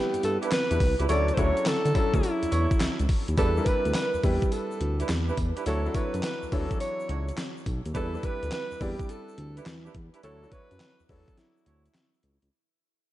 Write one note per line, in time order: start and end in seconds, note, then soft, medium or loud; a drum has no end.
0.00 1.10 G3 medium
0.00 1.10 B3 medium
0.00 1.10 D4 medium
0.00 1.10 E4 medium
0.00 0.24 G4 loud
0.00 1.11 B4 medium
0.14 0.17 G2 soft
0.14 closed hi-hat medium
0.14 shaker medium
0.23 0.38 G2 loud
0.23 0.37 A4 loud
0.23 closed hi-hat medium
0.23 tambourine medium
0.23 shaker soft
0.42 0.51 D4 medium
0.42 0.51 E4 medium
0.42 0.51 G4 medium
0.42 0.51 B4 medium
0.42 closed hi-hat medium
0.42 shaker medium
0.51 0.97 B4 loud
0.51 snare loud
0.51 clap medium
0.51 closed hi-hat medium
0.51 tambourine loud
0.51 shaker medium
0.70 0.78 E2 medium
0.70 0.79 D4 medium
0.70 0.79 E4 medium
0.70 0.79 G4 medium
0.70 0.80 B4 medium
0.70 closed hi-hat medium
0.70 shaker medium
0.80 0.95 C2 medium
0.80 kick loud
0.80 open hi-hat medium
0.80 tambourine medium
0.99 1.07 C#2 medium
0.99 1.07 D4 medium
0.99 1.08 E4 medium
0.99 1.08 G4 medium
0.99 1.08 B4 medium
0.99 closed hi-hat medium
0.99 shaker soft
1.09 1.31 D2 loud
1.09 1.31 F#3 medium
1.09 1.31 C#4 medium
1.09 1.26 D4 medium
1.09 1.31 D4 medium
1.09 1.26 E4 medium
1.09 1.31 E4 medium
1.09 1.26 F#4 medium
1.09 1.32 A4 medium
1.09 1.26 C#5 loud
1.09 1.36 D5 loud
1.09 closed hi-hat medium
1.09 tambourine medium
1.09 shaker medium
1.28 closed hi-hat medium
1.28 shaker soft
1.34 1.52 D2 loud
1.34 1.78 F#3 medium
1.34 1.78 C#4 medium
1.34 1.55 D4 medium
1.34 1.55 E4 medium
1.34 1.55 F#4 medium
1.34 1.40 C5 medium
1.34 1.55 C#5 medium
1.34 kick loud
1.34 closed hi-hat medium
1.34 shaker medium
1.38 1.78 D4 medium
1.38 1.78 E4 medium
1.38 1.79 A4 medium
1.38 1.69 C#5 loud
1.57 closed hi-hat medium
1.57 shaker medium
1.66 1.74 D3 soft
1.66 2.17 A4 loud
1.66 snare loud
1.66 clap loud
1.66 closed hi-hat medium
1.66 tambourine loud
1.66 shaker medium
1.85 1.93 D3 loud
1.85 closed hi-hat medium
1.85 shaker medium
1.95 2.73 F#3 medium
1.95 2.73 C#4 medium
1.95 2.74 D4 medium
1.95 2.74 E4 medium
1.95 2.74 A4 medium
1.95 kick loud
1.95 closed hi-hat medium
1.95 tambourine medium
2.14 2.21 D2 loud
2.14 3.10 E4 medium
2.14 kick loud
2.14 closed hi-hat medium
2.14 shaker medium
2.23 closed hi-hat medium
2.23 tambourine medium
2.23 shaker medium
2.42 2.46 E2 medium
2.42 closed hi-hat medium
2.42 shaker medium
2.51 2.67 E2 medium
2.51 2.69 D4 medium
2.51 2.69 E4 medium
2.51 2.69 F#4 medium
2.51 2.69 C#5 medium
2.51 closed hi-hat medium
2.51 tambourine medium
2.51 shaker medium
2.71 kick loud
2.71 closed hi-hat medium
2.71 shaker medium
2.80 2.88 C#2 medium
2.80 snare loud
2.80 clap medium
2.80 closed hi-hat medium
2.80 tambourine medium
2.80 shaker medium
2.99 3.07 C#2 medium
2.99 closed hi-hat medium
2.99 shaker medium
3.09 kick loud
3.09 open hi-hat medium
3.09 tambourine medium
3.28 3.36 D#2 medium
3.28 closed hi-hat medium
3.28 shaker soft
3.37 3.60 E2 loud
3.37 3.50 G3 medium
3.37 3.55 D4 loud
3.37 3.50 D4 medium
3.37 3.55 E4 medium
3.37 3.51 E4 medium
3.37 3.55 G4 medium
3.37 3.69 A4 loud
3.37 3.55 B4 loud
3.37 3.51 B4 medium
3.37 kick loud
3.37 closed hi-hat medium
3.37 tambourine medium
3.37 shaker medium
3.57 4.00 G3 medium
3.57 4.00 D4 medium
3.57 4.00 E4 medium
3.57 3.62 A#4 medium
3.57 shaker soft
3.64 3.83 D4 medium
3.64 3.83 E4 medium
3.64 3.83 G4 medium
3.64 4.04 B4 medium
3.64 3.84 B4 medium
3.64 3.95 B4 loud
3.64 kick medium
3.64 closed hi-hat medium
3.64 tambourine medium
3.64 shaker medium
3.85 3.93 D2 medium
3.85 closed hi-hat soft
3.85 shaker medium
3.94 4.26 B4 loud
3.94 snare loud
3.94 clap loud
3.94 closed hi-hat medium
3.94 tambourine loud
3.94 shaker medium
4.14 4.18 E2 soft
4.14 shaker medium
4.23 4.38 E2 medium
4.23 5.02 G3 medium
4.23 5.02 D4 medium
4.23 5.02 E4 medium
4.23 4.54 G4 loud
4.23 5.02 B4 medium
4.23 kick loud
4.23 open hi-hat medium
4.23 tambourine medium
4.23 shaker soft
4.42 kick loud
4.42 closed hi-hat medium
4.42 shaker soft
4.52 5.09 A4 medium
4.52 closed hi-hat medium
4.52 tambourine medium
4.52 shaker medium
4.71 shaker medium
4.81 5.03 D2 medium
4.81 closed hi-hat medium
4.99 5.08 D4 medium
4.99 5.08 E4 medium
4.99 5.08 G4 medium
4.99 5.08 B4 medium
4.99 closed hi-hat medium
4.99 shaker medium
5.09 5.31 E2 loud
5.09 snare loud
5.09 clap medium
5.09 closed hi-hat medium
5.09 tambourine loud
5.09 shaker medium
5.28 5.37 D4 medium
5.28 5.37 E4 medium
5.28 5.37 G4 medium
5.28 5.37 B4 medium
5.28 shaker soft
5.37 5.52 E2 medium
5.37 kick medium
5.37 closed hi-hat medium
5.37 tambourine medium
5.56 5.65 D4 medium
5.56 5.65 E4 medium
5.56 5.65 G4 medium
5.56 5.65 B4 medium
5.56 closed hi-hat medium
5.56 shaker soft
5.66 5.88 D2 loud
5.66 5.79 F#3 medium
5.66 5.83 D4 loud
5.66 5.79 D4 medium
5.66 5.83 E4 medium
5.66 5.79 E4 medium
5.66 5.83 F#4 medium
5.66 5.97 A4 medium
5.66 5.84 C#5 loud
5.66 5.79 C#5 medium
5.66 closed hi-hat medium
5.66 tambourine medium
5.66 shaker medium
5.85 6.29 F#3 medium
5.85 6.29 D4 medium
5.85 6.29 E4 medium
5.85 6.29 A4 medium
5.85 shaker soft
5.94 6.12 D4 medium
5.94 6.12 E4 medium
5.94 6.12 F#4 medium
5.94 6.23 B4 medium
5.94 6.12 C#5 medium
5.94 kick loud
5.94 closed hi-hat medium
5.94 tambourine medium
5.94 shaker soft
6.14 6.21 F#2 medium
6.14 closed hi-hat medium
6.14 shaker medium
6.23 6.48 B4 loud
6.23 snare loud
6.23 clap loud
6.23 closed hi-hat medium
6.23 tambourine loud
6.23 shaker medium
6.42 6.46 D2 soft
6.42 shaker medium
6.48 6.61 E3 medium
6.48 6.54 B4 medium
6.48 kick medium
6.48 open hi-hat medium
6.48 tambourine medium
6.48 shaker soft
6.52 6.67 D2 medium
6.52 7.31 D4 medium
6.52 7.31 E4 medium
6.52 6.80 A4 loud
6.52 7.31 C#5 medium
6.58 7.34 F#3 medium
6.71 kick loud
6.71 closed hi-hat medium
6.71 shaker soft
6.80 7.34 C#5 loud
6.80 closed hi-hat medium
6.80 tambourine medium
6.80 shaker medium
7.00 shaker medium
7.09 7.31 C#2 medium
7.09 7.26 D4 medium
7.09 7.26 E4 medium
7.09 7.26 F#4 medium
7.09 7.26 C#5 medium
7.09 closed hi-hat medium
7.28 closed hi-hat soft
7.28 shaker medium
7.37 snare loud
7.37 clap medium
7.37 closed hi-hat medium
7.37 tambourine loud
7.37 shaker medium
7.57 shaker medium
7.66 7.81 B1 medium
7.66 kick medium
7.66 closed hi-hat medium
7.66 tambourine medium
7.85 7.93 D#2 medium
7.85 closed hi-hat medium
7.85 shaker soft
7.94 8.17 E2 loud
7.94 8.07 G3 medium
7.94 8.12 D4 loud
7.94 8.07 D4 medium
7.94 8.12 E4 medium
7.94 8.08 E4 medium
7.94 8.12 G4 medium
7.94 8.26 A4 loud
7.94 8.12 B4 loud
7.94 8.08 B4 medium
7.94 kick loud
7.94 closed hi-hat medium
7.94 shaker medium
8.14 8.57 G3 medium
8.14 8.57 D4 medium
8.14 8.57 E4 medium
8.14 8.58 B4 medium
8.14 shaker soft
8.23 8.40 D4 medium
8.23 8.40 E4 medium
8.23 8.40 G4 medium
8.23 8.41 B4 medium
8.23 8.53 B4 loud
8.23 kick loud
8.23 closed hi-hat medium
8.23 shaker medium
8.43 8.50 D2 medium
8.43 closed hi-hat medium
8.43 shaker medium
8.51 8.83 B4 loud
8.51 snare loud
8.51 clap loud
8.51 closed hi-hat medium
8.51 shaker medium
8.71 8.75 E2 soft
8.71 shaker medium
8.80 8.96 E2 medium
8.80 9.59 G3 medium
8.80 9.59 D4 medium
8.80 9.59 E4 medium
8.80 9.12 G4 loud
8.80 9.60 D5 medium
8.80 kick loud
8.80 open hi-hat medium
8.80 shaker soft
8.99 kick loud
8.99 closed hi-hat medium
8.99 shaker soft
9.09 9.67 A4 medium
9.09 closed hi-hat medium
9.09 shaker medium
9.29 shaker medium
9.38 9.60 D2 medium
9.38 closed hi-hat medium
9.57 9.65 D4 medium
9.57 9.65 E4 medium
9.57 9.65 G4 medium
9.57 9.65 B4 medium
9.57 closed hi-hat medium
9.57 shaker medium
9.66 9.88 E2 loud
9.66 snare loud
9.66 clap medium
9.66 closed hi-hat medium
9.66 shaker medium
9.85 9.94 D4 medium
9.85 9.94 E4 medium
9.85 9.94 G4 medium
9.85 9.94 B4 medium
9.85 shaker medium
9.95 10.10 E2 medium
9.95 kick medium
9.95 closed hi-hat medium
10.14 10.22 D4 medium
10.14 10.22 E4 medium
10.14 10.22 G4 medium
10.14 10.23 B4 medium
10.14 closed hi-hat medium
10.14 shaker soft
10.23 10.46 D2 loud
10.23 10.36 F#3 medium
10.23 10.40 D4 loud
10.23 10.36 D4 medium
10.23 10.40 E4 medium
10.23 10.36 E4 medium
10.23 10.41 F#4 medium
10.23 10.54 A4 loud
10.23 10.41 C#5 loud
10.23 10.37 C#5 medium
10.23 closed hi-hat medium
10.23 shaker medium
10.43 10.86 F#3 medium
10.43 10.86 D4 medium
10.43 10.86 E4 medium
10.43 10.86 C#5 medium
10.43 shaker soft
10.52 10.69 D4 medium
10.52 10.69 E4 medium
10.52 10.69 F#4 medium
10.52 11.05 B4 loud
10.52 10.69 C#5 medium
10.52 kick loud
10.52 closed hi-hat medium
10.52 shaker medium
10.71 10.78 F#2 medium
10.71 closed hi-hat soft
10.71 shaker soft
10.80 snare loud
10.80 clap loud
10.80 closed hi-hat medium
10.80 shaker medium
10.99 11.04 E2 soft
10.99 shaker medium
11.05 11.87 F#3 medium
11.05 11.11 B4 medium
11.05 open hi-hat medium
11.05 shaker soft
11.09 11.24 E2 medium
11.09 11.88 D4 medium
11.09 11.88 E4 medium
11.09 11.40 A4 loud
11.09 11.88 C#5 medium
11.09 kick loud
11.28 kick medium
11.28 closed hi-hat medium
11.28 shaker soft
11.38 12.24 E4 medium
11.38 snare medium
11.38 closed hi-hat medium
11.38 shaker medium
11.57 shaker soft
11.66 11.88 D2 loud
11.66 11.83 D4 medium
11.66 11.83 E4 medium
11.66 11.83 F#4 medium
11.66 11.83 C#5 medium
11.66 closed hi-hat medium
11.66 shaker soft
11.85 closed hi-hat medium
11.85 shaker medium
11.94 snare loud
11.94 clap medium
11.94 closed hi-hat medium
11.94 shaker medium
12.14 shaker soft
12.23 12.38 C#2 medium
12.23 closed hi-hat medium
12.23 shaker soft
12.42 12.50 C#2 medium
12.42 closed hi-hat medium